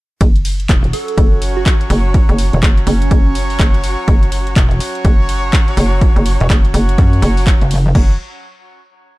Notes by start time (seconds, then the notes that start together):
0.21 F#1, kick, closed hi-hat, ride
0.36 closed hi-hat
0.45 open hi-hat, ride
0.60 closed hi-hat
0.69 E1 F#3 C#4 F#4 C#5, kick, clap, closed hi-hat, ride
0.84 closed hi-hat
0.93 A4, open hi-hat, ride
1.08 closed hi-hat
1.18 F#1, kick, closed hi-hat, ride
1.42 open hi-hat, ride
1.57 F#4
1.66 F#4, kick, clap, closed hi-hat, ride
1.81 closed hi-hat
1.90 F#1, open hi-hat, ride
2.14 kick, closed hi-hat, ride
2.29 F#1, closed hi-hat
2.39 open hi-hat, ride
2.53 E1, closed hi-hat
2.63 F#1 F#3 C#4 F#4 C#5, kick, clap, closed hi-hat, ride
2.78 closed hi-hat
2.87 F#1 C#4, open hi-hat, ride
3.02 closed hi-hat
3.11 F#1, kick, closed hi-hat, ride
3.35 open hi-hat, ride
3.50 open hi-hat
3.59 F#1, kick, clap, closed hi-hat, ride
3.74 closed hi-hat
3.84 open hi-hat, ride
4.08 F#1, kick, closed hi-hat, ride
4.23 closed hi-hat
4.32 open hi-hat, ride
4.47 closed hi-hat
4.56 E1 F#3 C#4 F#4 C#5, kick, clap, closed hi-hat, ride
4.71 closed hi-hat
4.80 open hi-hat, ride
4.95 closed hi-hat
5.05 F#1, kick, closed hi-hat, ride
5.29 open hi-hat, ride
5.53 kick, clap, closed hi-hat, ride
5.68 closed hi-hat
5.77 F#1, open hi-hat, ride
6.01 kick, closed hi-hat, ride
6.16 F#1, closed hi-hat
6.26 open hi-hat, ride
6.41 E1, closed hi-hat
6.50 F#1 F#3 C#4 F#4 C#5, kick, clap, closed hi-hat, ride
6.65 closed hi-hat
6.74 F#1, open hi-hat, ride
6.89 closed hi-hat
6.98 F#2, kick, closed hi-hat, ride
7.13 closed hi-hat
7.22 F#1, open hi-hat, ride
7.37 open hi-hat
7.47 kick, clap, closed hi-hat, ride
7.61 F#1, closed hi-hat
7.71 open hi-hat, ride
7.95 F#1 F#3 C#4 F#4 C#5, kick, crash